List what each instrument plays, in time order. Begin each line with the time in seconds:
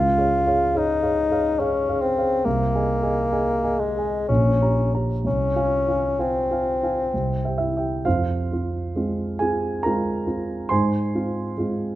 Already playing: grand piano C#2, bassoon F4
0.17 grand piano G#4 C#5 F5
0.47 grand piano G#4 C#5 F5
0.75 bassoon D#4, grand piano G#4 C#5 F5
1.03 grand piano G#4 C#5 F5
1.31 grand piano G#4 C#5 F5
1.59 bassoon C#4, grand piano G#4 C#5 F5
1.89 grand piano G#4 C#5 F5
2.02 bassoon C4
2.17 grand piano G#4 C#5 F5
2.45 grand piano C2, bassoon A#3
2.75 grand piano G#4 D#5 G#5
3.02 grand piano G#4 D#5 G#5
3.31 grand piano G#4 D#5 G#5
3.63 grand piano G#4 D#5 G#5
3.79 bassoon G#3
3.97 grand piano G#4 D#5 G#5
4.29 grand piano A#1, bassoon C#4
4.61 grand piano G4 C#5 A#5
4.93 grand piano G4 C#5 A#5
5.24 grand piano C2, bassoon C#4
5.56 grand piano F4 F5 G#5
5.88 grand piano F4 F5 G#5
6.19 bassoon C4, grand piano F4 F5 G#5
6.51 grand piano F4 F5 G#5
6.83 grand piano F4 F5 G#5
7.14 grand piano C2
7.45 grand piano G4 E5 G5
7.58 grand piano E4 E5
7.77 grand piano G4 E5 G5
8.05 grand piano F2 F4 C5 F5
8.52 grand piano C4 F4
8.96 grand piano G#3 C4 F4
9.39 grand piano C4 F4 G#4 G#5
9.83 grand piano G#3 C4 F4 A#4 A#5
10.27 grand piano C4 F4
10.69 grand piano G#2 C5 G#5 C6
11.15 grand piano C4 F4
11.57 grand piano G#3 C4 F4